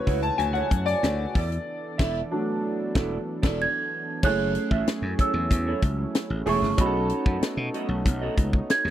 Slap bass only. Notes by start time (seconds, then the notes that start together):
0.07 C#2
0.39 D2
0.71 F#2
1.03 D2
1.35 E2
1.99 E1
2.95 E1
3.43 E1
4.23 F#1
4.71 A1
4.87 muted slap bass stroke
5.02 F#2
5.34 E2
5.50 E2
5.82 C#2
6.30 A1
6.46 E1
6.62 F#1
6.78 B1
7.26 F#2
7.41 muted slap bass stroke
7.57 B2
7.89 B1
8.06 B1
8.37 C#2
8.85 D#2